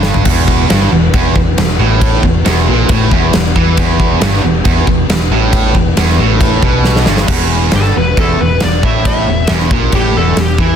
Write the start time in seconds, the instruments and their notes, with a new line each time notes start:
Already playing: fingered electric bass G1, distorted electric guitar G2
0.03 snare
0.14 floor tom
0.25 fingered electric bass E1, distorted electric guitar E2, tonewheel organ E3 B3 F#4, kick, crash
0.48 kick
0.70 fingered electric bass G1, distorted electric guitar G2, snare, crash
0.92 fingered electric bass E1, distorted electric guitar E2
1.13 fingered electric bass E1, distorted electric guitar E2, kick, crash
1.36 fingered electric bass E1, distorted electric guitar E2, kick
1.57 fingered electric bass E1, distorted electric guitar E2, snare, crash
1.78 fingered electric bass A1, distorted electric guitar A2
2.01 kick, crash
2.23 fingered electric bass E1, distorted electric guitar E2, kick
2.45 fingered electric bass E1, distorted electric guitar E2, snare, crash
2.57 snare
2.67 fingered electric bass A#1, distorted electric guitar A#2
2.89 fingered electric bass A1, distorted electric guitar A2, kick, crash
3.11 fingered electric bass E1, distorted electric guitar E2, kick
3.33 fingered electric bass E1, distorted electric guitar E2, snare, crash
3.56 fingered electric bass E2, distorted electric guitar E3, kick
3.76 fingered electric bass E1, distorted electric guitar E2, tonewheel organ G4, kick, crash
4.00 kick
4.21 fingered electric bass G1, distorted electric guitar G2, snare, crash
4.34 snare
4.44 fingered electric bass E1, distorted electric guitar E2
4.65 fingered electric bass E1, distorted electric guitar E2, kick, crash
4.87 fingered electric bass E1, distorted electric guitar E2, kick
5.09 fingered electric bass E1, distorted electric guitar E2, snare, crash
5.30 fingered electric bass A1, distorted electric guitar A2
5.53 kick, crash
5.74 fingered electric bass E1, distorted electric guitar E2, kick
5.97 fingered electric bass E1, distorted electric guitar E2, snare, crash
6.09 snare
6.19 fingered electric bass A1, distorted electric guitar A2
6.41 kick, crash
6.62 fingered electric bass B1, distorted electric guitar B2, kick
6.84 snare
6.96 snare
7.06 fingered electric bass G1, distorted electric guitar G2, snare
7.17 snare
7.28 fingered electric bass E1, distorted electric guitar E2, kick, crash
7.71 fingered electric bass G1, distorted electric guitar G2, snare, crash
7.76 lead electric guitar A4
7.84 snare
7.96 fingered electric bass E1, distorted electric guitar E2, lead electric guitar B4
8.17 fingered electric bass E1, distorted electric guitar E2, lead electric guitar A4, kick, crash
8.41 fingered electric bass E1, distorted electric guitar E2, lead electric guitar B4
8.60 fingered electric bass E1, distorted electric guitar E2, lead electric guitar D5, snare, crash
8.83 fingered electric bass A1, distorted electric guitar A2, lead electric guitar E5, kick
9.05 lead electric guitar E5, kick, crash
9.28 fingered electric bass E1, distorted electric guitar E2
9.47 fingered electric bass E1, distorted electric guitar E2, snare, crash
9.60 snare
9.71 fingered electric bass A#1, distorted electric guitar A#2, kick
9.92 fingered electric bass A1, distorted electric guitar A2, lead electric guitar G4, kick, crash
10.16 fingered electric bass E1, distorted electric guitar E2, lead electric guitar A4
10.37 fingered electric bass E1, distorted electric guitar E2, lead electric guitar G4, snare, crash
10.58 fingered electric bass E2, distorted electric guitar E3, lead electric guitar E4, kick